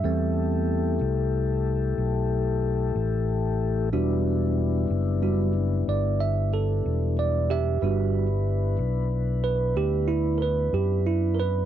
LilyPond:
<<
  \new Staff \with { instrumentName = "Tine electric piano" } { \time 12/8 \key e \minor \tempo 4. = 62 << { e''4. r1 r8 | r2. d''8 e''8 a'4 d''8 <g' e''>8~ | <g' e''>4. r4 b'8 g'8 e'8 <ais' b'>8 g'8 e'8 <ais' b'>8 | } \\ { <g b c'>4. r1 r8 | <g d' fis'>4. r8 <g d' fis'>8 r2. r8 | <g d' fis'>8 r1 r4. | } >> }
  \new Staff \with { instrumentName = "Tonewheel organ" } { \time 12/8 \key e \minor <a e' g' a'>1. | <g b d' e'>1. | <b d' e' b'>1. | }
  \new Staff \with { instrumentName = "Fingered electric bass" } { \clef bass \time 12/8 \key e \minor e,4. c,4. b,,4. a,,4. | e,,4. fis,,4. g,,4. e,,4. | g,,4. b,,4. d,4. fis,4. | }
>>